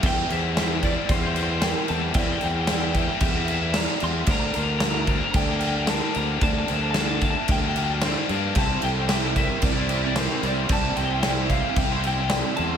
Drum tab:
CC |xxxxxxxx|xxxxxxxx|xxxxxxxx|xxxxxxxx|
SD |--o---o-|--o---o-|--o---o-|--o---o-|
BD |o--oo---|o--oo---|o--oo---|o--oo---|

CC |xxxxxxxx|xxxxxxxx|
SD |--o---o-|--o---o-|
BD |o--oo---|o--oo---|